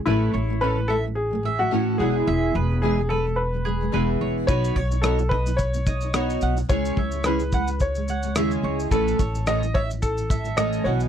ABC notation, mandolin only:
X:1
M:4/4
L:1/16
Q:"Swing 16ths" 1/4=108
K:Alyd
V:1 name="Mandolin"
B2 c3 z e z3 e2 z2 f z | e2 B3 z B z3 G2 B z c z | B2 c3 z d z3 d2 z2 f z | c2 e3 z f z3 f2 e z c z |
B2 c3 z e z3 e2 z2 f z |]